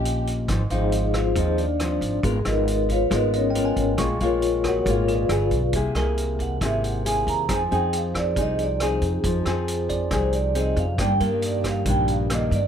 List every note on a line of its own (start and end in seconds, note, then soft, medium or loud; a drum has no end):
0.00 0.45 A#1 medium
0.00 0.47 A#2 medium
0.00 0.46 A#3 medium
0.00 0.46 C#4 medium
0.00 0.24 G4 medium
0.00 0.46 G4 medium
0.00 0.67 D#5 soft
0.00 0.25 G5 medium
0.05 closed hi-hat soft
0.27 closed hi-hat soft
0.48 0.69 G#1 loud
0.48 1.34 G#2 medium
0.48 0.61 F3 medium
0.48 0.62 C4 medium
0.48 0.62 D#4 medium
0.48 kick medium
0.48 cross-stick medium
0.48 closed hi-hat soft
0.70 1.32 G#1 medium
0.70 1.33 F3 medium
0.70 1.33 C4 medium
0.70 1.33 D#4 medium
0.70 1.13 D#4 medium
0.70 1.13 C5 medium
0.70 1.13 D#5 medium
0.70 2.22 F5 soft
0.70 closed hi-hat soft
0.74 1.13 G#4 medium
0.92 closed hi-hat soft
1.14 1.37 F4 medium
1.14 1.37 G#4 medium
1.14 1.37 C5 medium
1.14 1.37 F5 medium
1.14 kick soft
1.14 cross-stick medium
1.14 closed hi-hat soft
1.35 1.98 D#2 medium
1.35 2.21 D#3 medium
1.35 1.64 F3 medium
1.35 1.64 C4 medium
1.35 1.64 D#4 medium
1.35 1.59 G#4 medium
1.35 1.59 C5 medium
1.35 1.59 D#5 medium
1.35 kick medium
1.35 closed hi-hat soft
1.39 1.59 D#4 medium
1.58 2.20 D4 medium
1.58 2.20 D5 medium
1.58 closed hi-hat soft
1.80 2.22 F3 medium
1.80 2.22 C4 medium
1.80 cross-stick medium
1.80 closed hi-hat soft
2.01 2.22 G#1 medium
2.01 kick soft
2.01 closed hi-hat soft
2.23 2.44 G#1 medium
2.23 3.09 G#3 medium
2.23 2.36 B3 medium
2.23 2.37 F4 medium
2.23 2.37 A#4 medium
2.23 kick medium
2.23 closed hi-hat soft
2.45 3.07 G#1 medium
2.45 3.07 B3 medium
2.45 2.87 D#4 medium
2.45 3.08 F4 medium
2.45 2.88 A#4 medium
2.45 2.88 B4 medium
2.45 2.87 D#5 medium
2.45 cross-stick medium
2.45 closed hi-hat soft
2.68 closed hi-hat soft
2.89 3.12 F4 medium
2.89 3.12 B4 medium
2.89 3.12 C#5 medium
2.89 3.12 F5 loud
2.89 kick soft
2.89 closed hi-hat soft
3.10 3.73 G#1 medium
3.10 3.96 G#3 medium
3.10 3.51 B3 medium
3.10 3.51 F4 medium
3.10 3.51 A#4 medium
3.10 kick medium
3.10 cross-stick medium
3.10 closed hi-hat soft
3.14 3.34 D#4 medium
3.14 3.34 A#4 medium
3.14 3.34 B4 medium
3.14 3.34 D#5 medium
3.33 3.97 C#4 medium
3.33 3.96 G#4 medium
3.33 3.97 A#4 medium
3.33 3.97 C#5 medium
3.33 4.17 D#5 medium
3.33 closed hi-hat soft
3.50 4.31 G5 soft
3.55 3.97 B3 medium
3.55 3.97 F4 medium
3.55 3.97 A#4 medium
3.55 closed hi-hat soft
3.65 4.44 G#5 soft
3.76 3.98 G#1 medium
3.76 kick soft
3.76 closed hi-hat soft
3.98 4.19 A#1 loud
3.98 4.84 A#2 medium
3.98 4.17 G#3 medium
3.98 4.17 A#3 medium
3.98 4.17 F4 medium
3.98 5.48 C#6 soft
3.98 kick medium
3.98 cross-stick medium
3.98 closed hi-hat soft
4.20 4.83 A#1 medium
4.20 4.83 G#3 medium
4.20 4.83 A#3 medium
4.20 4.83 F4 medium
4.20 4.63 F4 medium
4.20 4.63 C#5 medium
4.20 4.63 F5 medium
4.20 closed hi-hat soft
4.24 4.63 A#4 medium
4.42 closed hi-hat soft
4.64 4.87 A#4 medium
4.64 kick soft
4.64 cross-stick medium
4.64 closed hi-hat soft
4.68 4.88 F#4 medium
4.68 4.88 C#5 medium
4.68 4.88 F#5 loud
4.86 5.27 G#1 medium
4.86 5.28 A#2 medium
4.86 5.27 G#3 medium
4.86 5.27 A#3 medium
4.86 5.27 F4 medium
4.86 kick medium
4.86 closed hi-hat soft
4.90 5.10 F4 medium
4.90 5.10 A#4 medium
4.90 5.10 C#5 medium
4.90 5.10 F5 medium
5.08 5.49 G#4 medium
5.08 closed hi-hat soft
5.12 5.72 F4 medium
5.12 5.72 B4 medium
5.12 5.72 D5 medium
5.12 5.72 F5 medium
5.29 5.50 G1 loud
5.29 5.60 B3 medium
5.29 5.60 F4 medium
5.29 5.60 G#4 medium
5.29 cross-stick medium
5.29 closed hi-hat soft
5.51 5.73 B1 medium
5.51 kick soft
5.51 closed hi-hat soft
5.73 5.94 C2 loud
5.73 6.60 C3 medium
5.73 5.93 A#3 medium
5.73 5.93 E4 medium
5.73 5.93 G#4 medium
5.73 kick medium
5.73 closed hi-hat soft
5.95 6.57 C2 medium
5.95 6.58 A#3 medium
5.95 6.58 E4 medium
5.95 6.59 G#4 medium
5.95 7.47 A#4 medium
5.95 cross-stick medium
5.95 closed hi-hat soft
6.17 closed hi-hat soft
6.39 6.62 F#5 medium
6.39 kick soft
6.39 closed hi-hat soft
6.61 7.23 G#1 medium
6.61 7.47 C3 medium
6.61 7.02 A#3 medium
6.61 7.02 E4 medium
6.61 7.03 G#4 medium
6.61 6.84 E5 medium
6.61 kick medium
6.61 cross-stick medium
6.61 closed hi-hat soft
6.84 7.05 F#5 medium
6.84 closed hi-hat soft
7.05 7.47 A#3 medium
7.05 7.47 E4 medium
7.05 7.48 G#4 medium
7.05 7.28 G#5 medium
7.05 closed hi-hat soft
7.27 7.49 D#2 medium
7.27 7.49 A#5 loud
7.27 kick soft
7.27 closed hi-hat soft
7.48 7.69 F2 loud
7.48 8.34 F3 medium
7.48 10.95 F3 medium
7.48 7.62 C4 medium
7.48 10.95 D#4 medium
7.48 7.62 D#4 medium
7.48 10.95 G#4 medium
7.48 7.62 G#4 medium
7.48 kick medium
7.48 cross-stick medium
7.48 closed hi-hat soft
7.54 7.73 G#5 medium
7.71 8.33 F2 medium
7.71 8.33 C4 medium
7.71 8.33 D#4 medium
7.71 8.34 G#4 medium
7.71 7.94 G5 medium
7.71 closed hi-hat soft
7.93 closed hi-hat soft
7.98 8.16 F5 medium
8.15 8.38 D5 medium
8.15 kick soft
8.15 cross-stick medium
8.15 closed hi-hat soft
8.36 8.98 C2 medium
8.36 9.22 C3 medium
8.36 8.65 C4 medium
8.36 8.65 D#4 medium
8.36 8.65 G#4 medium
8.36 kick medium
8.36 closed hi-hat soft
8.41 8.60 D#5 medium
8.59 closed hi-hat soft
8.63 8.82 D5 medium
8.80 9.43 C4 medium
8.80 9.43 D#4 medium
8.80 9.43 G#4 medium
8.80 cross-stick medium
8.80 closed hi-hat soft
8.84 9.04 C5 medium
9.02 9.22 F2 medium
9.02 kick soft
9.02 closed hi-hat soft
9.06 9.45 G#4 medium
9.24 9.44 F2 loud
9.24 10.10 F3 medium
9.24 kick medium
9.24 closed hi-hat soft
9.46 10.08 F2 medium
9.46 10.08 C4 medium
9.46 10.08 D#4 medium
9.46 10.09 G#4 medium
9.46 cross-stick medium
9.46 closed hi-hat soft
9.68 closed hi-hat soft
9.89 11.17 D5 medium
9.89 kick soft
9.89 closed hi-hat soft
10.11 10.73 C2 medium
10.11 10.97 C3 medium
10.11 10.40 C4 medium
10.11 10.40 D#4 medium
10.11 10.40 G#4 medium
10.11 kick medium
10.11 cross-stick medium
10.11 closed hi-hat soft
10.17 10.35 C5 medium
10.33 10.55 D5 medium
10.33 closed hi-hat soft
10.55 10.84 C4 medium
10.55 10.85 D#4 medium
10.55 10.85 G#4 medium
10.55 closed hi-hat soft
10.60 10.79 D#5 medium
10.76 10.98 F2 medium
10.76 10.99 F5 medium
10.76 kick soft
10.76 closed hi-hat soft
10.98 11.19 G2 loud
10.98 11.85 G2 medium
10.98 12.68 D#3 medium
10.98 11.12 D#3 medium
10.98 11.13 A#3 medium
10.98 12.68 D4 medium
10.98 11.13 D4 medium
10.98 12.68 G4 medium
10.98 11.21 G5 loud
10.98 kick medium
10.98 cross-stick medium
10.98 closed hi-hat soft
11.20 11.82 G2 medium
11.20 11.83 D#3 medium
11.20 11.83 A#3 medium
11.20 11.83 D4 medium
11.20 12.68 A#4 soft
11.20 11.44 A#4 medium
11.20 closed hi-hat soft
11.42 closed hi-hat soft
11.46 11.66 D5 medium
11.64 kick soft
11.64 cross-stick medium
11.64 closed hi-hat soft
11.68 11.88 F5 medium
11.86 12.47 A#1 medium
11.86 12.68 G2 medium
11.86 12.27 D#3 medium
11.86 12.27 A#3 medium
11.86 12.27 D4 medium
11.86 kick medium
11.86 closed hi-hat soft
11.90 12.09 G5 loud
12.08 12.31 F5 medium
12.08 closed hi-hat soft
12.30 12.59 D#3 medium
12.30 12.60 A#3 medium
12.30 12.60 D4 medium
12.30 cross-stick medium
12.30 closed hi-hat soft
12.34 12.53 D#5 medium
12.51 12.68 G2 medium
12.51 12.68 D5 medium
12.51 kick soft
12.51 closed hi-hat soft